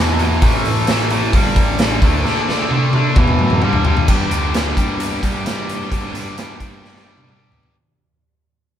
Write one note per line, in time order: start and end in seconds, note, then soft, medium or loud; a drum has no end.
0.00 0.18 E2 medium
0.00 0.38 E2 medium
0.00 0.18 B2 medium
0.00 0.19 E3 medium
0.19 0.41 E2 medium
0.19 0.41 B2 medium
0.19 0.41 E3 medium
0.19 open hi-hat soft
0.42 0.63 A1 medium
0.42 0.88 A2 medium
0.42 0.88 E3 medium
0.42 0.89 A3 medium
0.42 kick loud
0.42 open hi-hat medium
0.65 1.30 A1 medium
0.65 open hi-hat soft
0.87 1.10 A2 medium
0.87 1.10 E3 medium
0.87 1.11 A3 medium
0.87 snare medium
0.87 open hi-hat medium
1.10 1.33 A2 medium
1.10 1.33 E3 medium
1.10 1.33 A3 medium
1.10 open hi-hat soft
1.33 1.54 G1 medium
1.33 1.79 G2 medium
1.33 1.79 D3 medium
1.33 1.80 G3 loud
1.33 kick loud
1.33 open hi-hat medium
1.56 1.98 A1 medium
1.56 kick medium
1.56 open hi-hat soft
1.79 2.01 G2 medium
1.79 2.01 D3 medium
1.79 2.02 G3 medium
1.79 snare loud
1.79 open hi-hat medium
2.02 2.23 D2 medium
2.02 2.24 D3 medium
2.02 2.24 A3 medium
2.02 2.25 D4 medium
2.02 kick medium
2.02 open hi-hat soft
2.25 2.70 D3 medium
2.25 2.71 A3 medium
2.25 2.71 D4 loud
2.25 snare medium
2.49 snare medium
2.71 2.93 D3 medium
2.71 2.93 A3 medium
2.71 2.94 D4 medium
2.71 high tom medium
2.93 3.15 D3 medium
2.93 3.16 A3 medium
2.93 3.16 D4 medium
2.93 high tom medium
3.16 3.37 E2 medium
3.16 3.61 E2 medium
3.16 3.61 B2 medium
3.16 3.61 E3 loud
3.16 kick loud
3.16 mid tom medium
3.27 mid tom medium
3.39 3.60 F#2 medium
3.39 mid tom medium
3.50 mid tom medium
3.62 4.04 G2 medium
3.62 3.84 G2 medium
3.62 3.84 D3 medium
3.62 3.84 G3 medium
3.62 mid tom medium
3.73 floor tom medium
3.85 4.06 G2 medium
3.85 4.07 D3 medium
3.85 4.07 G3 medium
3.85 floor tom medium
3.97 floor tom medium
4.08 4.29 G2 medium
4.08 4.53 G2 medium
4.08 4.53 D3 medium
4.08 4.32 G3 medium
4.08 4.32 B3 medium
4.08 4.31 D4 medium
4.08 4.30 G4 medium
4.08 kick medium
4.08 crash medium
4.30 4.72 D2 medium
4.30 4.54 G3 soft
4.30 4.54 B3 medium
4.30 4.55 D4 medium
4.30 4.55 G4 medium
4.30 closed hi-hat medium
4.53 5.90 G2 medium
4.53 5.00 D3 medium
4.53 4.79 G3 medium
4.53 4.78 B3 medium
4.53 4.77 D4 medium
4.53 4.76 G4 medium
4.53 snare loud
4.53 closed hi-hat medium
4.77 5.18 G2 medium
4.77 5.24 G3 medium
4.77 5.24 B3 medium
4.77 5.23 D4 medium
4.77 5.22 G4 medium
4.77 kick medium
4.77 closed hi-hat medium
5.00 closed hi-hat medium
5.22 5.87 G2 medium
5.22 5.45 G3 medium
5.22 5.46 B3 medium
5.22 5.47 D4 medium
5.22 5.47 G4 medium
5.22 kick medium
5.22 closed hi-hat medium
5.45 5.91 G3 medium
5.45 5.91 B3 medium
5.45 5.91 D4 medium
5.45 5.92 G4 medium
5.45 snare medium
5.45 closed hi-hat medium
5.69 closed hi-hat medium
5.91 6.36 G2 medium
5.91 6.56 G2 medium
5.91 6.37 D3 medium
5.91 6.15 G3 medium
5.91 6.15 B3 medium
5.91 6.14 D4 medium
5.91 6.13 G4 medium
5.91 kick medium
5.91 closed hi-hat medium
6.14 6.37 G3 soft
6.14 6.37 B3 medium
6.14 6.38 D4 medium
6.14 6.39 G4 medium
6.14 closed hi-hat medium
6.37 6.83 G2 medium
6.37 6.83 D3 medium
6.37 6.61 G3 medium
6.37 6.60 B3 medium
6.37 6.60 D4 medium
6.37 6.58 G4 medium
6.37 snare medium
6.37 closed hi-hat medium
6.59 7.48 G2 medium
6.59 7.07 G3 soft
6.59 7.06 B3 soft
6.59 7.05 D4 medium
6.59 7.04 G4 medium
6.59 kick medium
6.59 closed hi-hat medium
6.84 snare soft
6.96 snare soft
7.05 7.28 G3 soft
7.05 7.29 B3 soft
7.05 7.30 D4 soft
7.05 7.30 G4 medium
7.18 high tom soft
7.29 7.74 G3 medium
7.29 7.74 B3 medium
7.29 7.74 D4 medium
7.29 7.75 G4 medium
7.29 mid tom medium
7.52 floor tom medium
7.63 floor tom medium